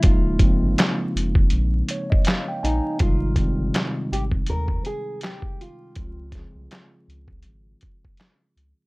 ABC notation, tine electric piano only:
X:1
M:4/4
L:1/16
Q:"Swing 16ths" 1/4=81
K:Ebmix
V:1 name="Tine electric piano" clef=bass
[D,F,A,B,E]2 [D,F,A,B,C]8 d e z g a2 | [C,E,G,A,E]2 [C,E,G,A,C]8 z6 | [D,F,A,CF]2 [D,F,A,CA]8 z6 |]